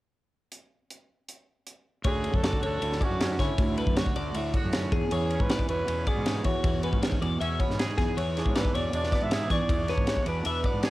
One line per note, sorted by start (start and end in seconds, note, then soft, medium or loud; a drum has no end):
0.52 closed hi-hat medium
0.90 closed hi-hat soft
1.29 closed hi-hat soft
1.67 closed hi-hat soft
2.04 2.30 D2 medium
2.04 3.58 D2 medium
2.04 2.24 D3 medium
2.04 3.02 C#4 soft
2.04 2.44 F#4 medium
2.04 2.37 G#4 medium
2.04 2.43 C#5 medium
2.04 kick loud
2.04 ride medium
2.24 2.62 D3 medium
2.24 ride soft
2.33 2.51 F#2 medium
2.33 2.64 A4 medium
2.33 kick medium
2.44 3.98 F#4 medium
2.44 2.62 D5 medium
2.44 snare loud
2.44 ride medium
2.53 kick medium
2.62 2.80 D2 medium
2.62 3.76 D3 medium
2.62 3.05 A4 medium
2.62 3.00 C#5 medium
2.62 ride medium
2.82 2.99 D2 medium
2.82 3.58 A2 medium
2.82 ride medium
2.92 snare soft
3.01 3.20 C#4 soft
3.01 3.42 F#4 medium
3.01 3.39 D5 medium
3.01 kick medium
3.01 ride medium
3.11 3.36 F#2 medium
3.20 3.40 C#4 medium
3.20 snare medium
3.20 ride medium
3.39 3.48 D3 medium
3.39 3.62 C#4 medium
3.39 3.97 E4 medium
3.39 3.77 C#5 medium
3.39 kick medium
3.39 snare soft
3.39 ride medium
3.58 3.84 D2 medium
3.58 4.92 D2 medium
3.58 kick loud
3.58 ride medium
3.77 4.15 D3 soft
3.77 3.97 B4 medium
3.77 ride medium
3.87 4.04 F#2 medium
3.87 kick medium
3.96 4.56 F#4 soft
3.96 4.16 C#5 medium
3.96 snare loud
3.96 ride medium
4.06 kick medium
4.16 4.33 D2 medium
4.16 5.11 D3 medium
4.16 4.35 D5 medium
4.16 ride medium
4.34 4.51 D2 medium
4.34 4.93 A2 medium
4.34 4.54 E5 medium
4.34 ride medium
4.54 4.96 F#4 soft
4.54 4.92 C#5 medium
4.54 kick medium
4.54 ride medium
4.64 4.89 F#2 medium
4.73 5.32 C#4 medium
4.73 snare loud
4.73 ride medium
4.92 5.00 E2 medium
4.92 6.44 E2 medium
4.92 5.11 G#4 medium
4.92 kick medium
4.92 ride soft
5.11 5.37 E2 medium
5.11 5.50 E3 medium
5.11 5.42 G#4 medium
5.11 5.50 C#5 medium
5.11 ride medium
5.30 5.86 C#4 medium
5.30 ride medium
5.40 5.57 G#2 medium
5.40 5.69 B4 medium
5.40 kick medium
5.49 6.64 E3 medium
5.49 5.69 D5 medium
5.49 snare loud
5.49 ride medium
5.59 kick medium
5.69 5.85 E2 medium
5.69 6.43 B2 medium
5.69 6.09 B4 medium
5.69 6.07 C#5 medium
5.69 ride medium
5.87 6.05 E2 medium
5.87 6.26 C#4 medium
5.87 ride medium
6.07 6.87 B3 soft
6.07 6.45 G#4 medium
6.07 6.45 D5 medium
6.07 kick medium
6.07 ride medium
6.17 6.42 G#2 medium
6.26 6.43 C#4 medium
6.26 snare medium
6.26 ride medium
6.44 7.97 E2 medium
6.44 6.53 E3 medium
6.44 6.99 F#4 medium
6.44 6.83 C#5 medium
6.44 kick medium
6.44 ride medium
6.64 6.89 E2 medium
6.64 7.02 E3 medium
6.64 kick loud
6.64 ride medium
6.83 7.41 C#4 soft
6.83 7.02 B4 medium
6.83 ride medium
6.93 7.10 G#2 medium
6.93 kick medium
7.02 8.16 E3 medium
7.02 7.21 C#5 medium
7.02 snare medium
7.02 ride medium
7.12 kick medium
7.21 7.38 E2 medium
7.21 7.96 B2 medium
7.21 7.40 D5 medium
7.21 ride medium
7.40 7.57 E2 medium
7.40 7.96 C#4 medium
7.40 7.60 E5 medium
7.40 ride medium
7.60 9.14 B3 soft
7.60 7.98 C#5 medium
7.60 kick medium
7.60 ride soft
7.69 7.94 G#2 medium
7.69 snare soft
7.79 8.41 G#4 medium
7.79 snare medium
7.79 ride medium
7.98 8.06 E2 medium
7.98 9.50 E2 medium
7.98 8.17 G#4 medium
7.98 kick medium
7.98 snare soft
7.98 ride medium
8.17 8.42 E2 medium
8.17 8.55 E3 medium
8.17 8.55 C#5 medium
8.17 ride medium
8.37 8.93 D4 medium
8.37 8.58 G#4 medium
8.37 snare soft
8.37 ride soft
8.45 8.62 G#2 medium
8.45 kick medium
8.55 9.70 E3 medium
8.55 8.77 B4 medium
8.55 8.74 D5 medium
8.55 snare medium
8.55 ride medium
8.65 kick medium
8.74 8.91 E2 medium
8.74 9.49 B2 medium
8.74 9.12 C#5 medium
8.74 8.94 D5 medium
8.74 ride medium
8.93 9.10 E2 medium
8.93 9.49 D4 medium
8.93 9.25 D5 medium
8.93 ride medium
9.04 snare soft
9.12 10.64 B3 soft
9.12 9.51 D5 medium
9.12 kick medium
9.12 snare soft
9.12 ride medium
9.22 9.47 G#2 medium
9.22 9.51 E5 medium
9.31 9.92 G#4 medium
9.31 snare loud
9.31 ride medium
9.50 10.90 E2 medium
9.50 9.59 E3 medium
9.50 9.92 D5 medium
9.50 9.89 C#6 medium
9.50 kick medium
9.50 snare soft
9.50 ride medium
9.69 9.95 E2 medium
9.69 10.07 E3 medium
9.69 kick loud
9.69 ride medium
9.88 10.44 D4 soft
9.88 10.08 B4 medium
9.88 10.27 C#5 medium
9.88 snare soft
9.88 ride soft
9.98 10.15 G#2 medium
9.98 kick medium
10.07 10.90 E3 medium
10.07 10.27 C#5 medium
10.07 snare medium
10.07 ride medium
10.17 kick medium
10.26 10.43 E2 medium
10.26 10.90 B2 medium
10.26 10.45 B4 medium
10.26 10.46 D5 medium
10.26 ride medium
10.45 10.62 E2 medium
10.45 10.90 D4 medium
10.45 10.82 B4 medium
10.45 10.65 E5 medium
10.45 ride medium
10.64 10.90 B3 soft
10.64 10.90 D5 medium
10.64 kick medium
10.64 ride medium
10.74 10.90 G#2 medium
10.83 10.90 G#4 medium
10.83 snare medium
10.83 ride medium